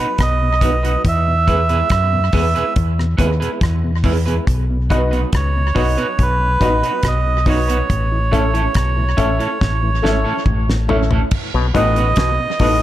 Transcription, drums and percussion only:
0.18 kick, cross-stick, closed hi-hat
0.61 kick, closed hi-hat
0.85 closed hi-hat
1.05 kick, closed hi-hat
1.48 kick, closed hi-hat
1.69 closed hi-hat
1.90 kick, cross-stick, closed hi-hat
2.33 kick, open hi-hat
2.56 closed hi-hat
2.76 kick, closed hi-hat
2.99 cross-stick
3.19 kick, closed hi-hat
3.42 closed hi-hat
3.61 kick, cross-stick, closed hi-hat
4.04 kick, open hi-hat
4.28 closed hi-hat
4.47 kick, closed hi-hat
4.90 kick, closed hi-hat
5.13 closed hi-hat
5.33 kick, cross-stick, closed hi-hat
5.76 kick, open hi-hat
5.98 closed hi-hat
6.19 kick, closed hi-hat
6.61 kick, closed hi-hat
6.83 closed hi-hat
7.03 kick, cross-stick, closed hi-hat
7.46 kick, open hi-hat
7.70 closed hi-hat
7.90 kick, closed hi-hat
8.33 kick, closed hi-hat
8.55 closed hi-hat
8.74 kick, cross-stick, closed hi-hat
9.18 kick, closed hi-hat
9.40 closed hi-hat
9.61 kick, snare
10.05 snare
10.46 kick, mid tom
10.70 snare
10.89 floor tom
11.11 floor tom
11.31 kick, crash
11.75 kick, closed hi-hat
11.96 closed hi-hat
12.16 kick, snare, closed hi-hat
12.59 kick, open hi-hat

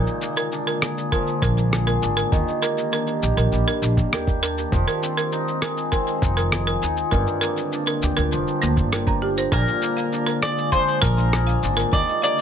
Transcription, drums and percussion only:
0.07 cabasa
0.22 cabasa
0.37 cabasa
0.52 cabasa
0.67 cabasa
0.82 cross-stick, cabasa
0.98 cabasa
1.12 kick, cabasa
1.27 cabasa
1.42 kick, cabasa
1.58 cabasa
1.73 cross-stick, cabasa
1.88 cabasa
2.03 cabasa
2.18 cabasa
2.32 kick, cabasa
2.48 cabasa
2.63 cabasa
2.78 cabasa
2.92 cabasa
3.07 cabasa
3.23 cabasa
3.38 cabasa
3.52 cabasa
3.68 cabasa
3.83 cabasa
3.97 kick, cabasa
4.13 cross-stick, cabasa
4.27 kick, cabasa
4.43 cabasa
4.58 cabasa
4.72 kick, cabasa
4.88 cabasa
5.03 cabasa
5.18 cabasa
5.32 cabasa
5.48 cabasa
5.62 cross-stick, cabasa
5.77 cabasa
5.92 kick, cabasa
6.08 cabasa
6.22 kick, cabasa
6.38 cabasa
6.52 cross-stick, cabasa
6.67 cabasa
6.83 cabasa
6.97 cabasa
7.12 kick, cabasa
7.27 cabasa
7.42 cabasa
7.57 cabasa
7.72 cabasa
7.87 cabasa
8.02 cabasa
8.17 cabasa
8.32 cabasa
8.48 cabasa
8.62 cabasa
8.77 kick, cabasa
8.93 cross-stick, cabasa
9.07 kick, cabasa
9.37 cabasa
9.52 kick, cabasa
9.68 cabasa
9.82 cabasa
9.98 cabasa
10.13 cabasa
10.28 cabasa
10.43 cross-stick, cabasa
10.58 cabasa
10.72 kick, cabasa
10.88 cabasa
11.02 kick, cabasa
11.18 cabasa
11.33 cross-stick, cabasa
11.48 cabasa
11.63 cabasa
11.79 cabasa
11.93 kick, cabasa
12.09 cabasa
12.24 cabasa

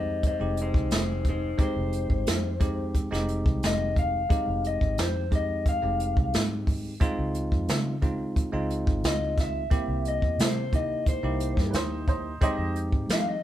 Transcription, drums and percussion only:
0.23 kick, closed hi-hat
0.57 closed hi-hat
0.74 kick
0.91 snare, closed hi-hat
1.25 kick, closed hi-hat
1.59 kick, closed hi-hat
1.93 closed hi-hat
2.10 kick
2.27 snare, closed hi-hat
2.60 kick, closed hi-hat
2.95 kick, closed hi-hat
3.13 snare
3.29 closed hi-hat
3.46 kick
3.63 snare, closed hi-hat
3.96 kick, closed hi-hat
4.30 kick, closed hi-hat
4.64 closed hi-hat
4.81 kick
4.98 snare, closed hi-hat
5.32 kick, closed hi-hat
5.66 kick, closed hi-hat
6.00 closed hi-hat
6.17 kick
6.34 snare, closed hi-hat
6.67 kick, open hi-hat
7.01 kick, closed hi-hat
7.34 closed hi-hat
7.52 kick
7.68 snare, closed hi-hat
8.02 kick, closed hi-hat
8.36 kick, closed hi-hat
8.70 closed hi-hat
8.87 kick
9.04 snare, closed hi-hat
9.38 kick, snare, closed hi-hat
9.71 kick, closed hi-hat
10.05 closed hi-hat
10.22 kick
10.39 snare, closed hi-hat
10.73 kick, closed hi-hat
11.06 kick, closed hi-hat
11.40 closed hi-hat
11.57 kick, snare
11.73 snare, closed hi-hat
12.08 kick, closed hi-hat
12.42 kick, closed hi-hat
12.76 closed hi-hat
12.92 kick
13.09 snare, closed hi-hat

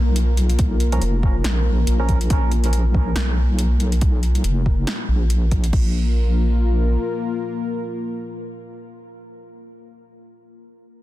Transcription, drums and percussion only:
0.16 closed hi-hat
0.37 closed hi-hat
0.50 closed hi-hat
0.59 kick, closed hi-hat
0.80 closed hi-hat
0.92 closed hi-hat
1.02 closed hi-hat
1.23 kick
1.44 snare, closed hi-hat
1.87 closed hi-hat
2.09 kick, closed hi-hat
2.21 closed hi-hat
2.30 kick, closed hi-hat
2.52 closed hi-hat
2.64 closed hi-hat
2.73 closed hi-hat
2.94 kick
3.16 snare, closed hi-hat
3.59 closed hi-hat
3.80 closed hi-hat
3.92 closed hi-hat
4.01 kick, closed hi-hat
4.23 closed hi-hat
4.35 closed hi-hat
4.44 closed hi-hat
4.66 kick
4.87 snare, closed hi-hat
5.30 closed hi-hat
5.51 kick, closed hi-hat
5.64 closed hi-hat
5.73 kick, crash

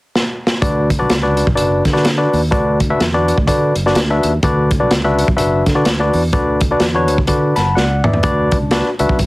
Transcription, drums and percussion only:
0.15 snare
0.47 snare
0.62 kick, closed hi-hat
0.90 kick, closed hi-hat
1.10 snare, closed hi-hat
1.37 closed hi-hat
1.47 kick
1.57 closed hi-hat
1.85 kick, snare, closed hi-hat
1.96 snare
2.05 snare, closed hi-hat
2.33 open hi-hat
2.52 kick, closed hi-hat
2.80 kick, closed hi-hat
3.00 snare, closed hi-hat
3.28 closed hi-hat
3.38 kick
3.48 kick, closed hi-hat
3.76 closed hi-hat
3.87 snare
3.95 snare, closed hi-hat
4.23 closed hi-hat
4.43 kick, closed hi-hat
4.71 kick, closed hi-hat
4.91 snare, closed hi-hat
5.19 closed hi-hat
5.28 kick
5.38 closed hi-hat
5.66 kick, snare, closed hi-hat
5.85 snare, closed hi-hat
6.13 open hi-hat
6.33 kick, closed hi-hat
6.61 kick, closed hi-hat
6.80 snare, closed hi-hat
7.08 closed hi-hat
7.18 kick
7.27 kick, closed hi-hat
7.56 snare, closed hi-hat
7.77 snare
8.04 mid tom
8.13 floor tom
8.23 kick, closed hi-hat
8.51 kick, closed hi-hat
8.71 snare, closed hi-hat
8.99 closed hi-hat
9.09 kick
9.19 kick, closed hi-hat

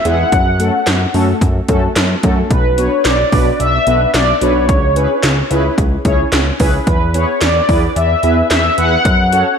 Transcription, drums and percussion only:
0.05 closed hi-hat
0.32 kick, closed hi-hat
0.60 closed hi-hat
0.87 snare, clap, closed hi-hat
1.14 open hi-hat
1.41 kick, closed hi-hat
1.68 kick, closed hi-hat
1.96 snare, clap, closed hi-hat
2.23 kick, closed hi-hat
2.51 kick, closed hi-hat
2.78 closed hi-hat
3.05 snare, clap, closed hi-hat
3.32 kick, open hi-hat
3.60 closed hi-hat
3.87 closed hi-hat
4.14 snare, clap, closed hi-hat
4.41 closed hi-hat
4.69 kick, closed hi-hat
4.96 closed hi-hat
5.23 snare, clap, closed hi-hat
5.51 closed hi-hat
5.78 kick, closed hi-hat
6.05 kick, closed hi-hat
6.32 snare, clap, closed hi-hat
6.60 kick, open hi-hat
6.87 kick, closed hi-hat
7.14 closed hi-hat
7.41 snare, clap, closed hi-hat
7.69 kick, open hi-hat
7.96 closed hi-hat
8.23 closed hi-hat
8.50 snare, clap, closed hi-hat
8.78 closed hi-hat
9.05 kick, closed hi-hat
9.33 closed hi-hat

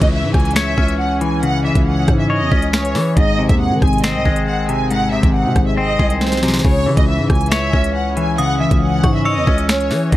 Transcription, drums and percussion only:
0.01 kick, closed hi-hat
0.34 kick, cross-stick, closed hi-hat
0.40 closed hi-hat
0.45 closed hi-hat
0.51 closed hi-hat
0.56 finger snap, snare, closed hi-hat
0.78 kick
0.88 closed hi-hat
1.21 closed hi-hat
1.43 closed hi-hat
1.75 kick, closed hi-hat
2.08 kick, cross-stick, closed hi-hat
2.52 kick
2.62 closed hi-hat
2.73 finger snap, snare
2.85 closed hi-hat
2.95 snare, open hi-hat
3.17 kick, closed hi-hat
3.49 kick, closed hi-hat
3.82 kick, cross-stick, closed hi-hat
3.87 closed hi-hat
3.93 closed hi-hat
3.98 closed hi-hat
4.04 finger snap, snare, closed hi-hat
4.25 kick
4.36 closed hi-hat
4.69 closed hi-hat
4.91 closed hi-hat
5.23 kick, closed hi-hat
5.56 kick, cross-stick, closed hi-hat
5.99 kick
6.10 closed hi-hat
6.21 snare
6.27 snare
6.32 snare, closed hi-hat
6.37 snare
6.43 snare, closed hi-hat
6.48 snare
6.54 snare
6.59 snare
6.65 kick, crash
6.97 kick, closed hi-hat
7.30 kick, cross-stick, closed hi-hat
7.35 closed hi-hat
7.41 closed hi-hat
7.46 closed hi-hat
7.51 finger snap, snare, closed hi-hat
7.73 kick
7.84 closed hi-hat
8.17 closed hi-hat
8.38 closed hi-hat
8.71 kick, closed hi-hat
9.04 kick, cross-stick, closed hi-hat
9.47 kick
9.58 closed hi-hat
9.69 finger snap, snare
9.80 closed hi-hat
9.91 snare, open hi-hat
10.12 kick, closed hi-hat

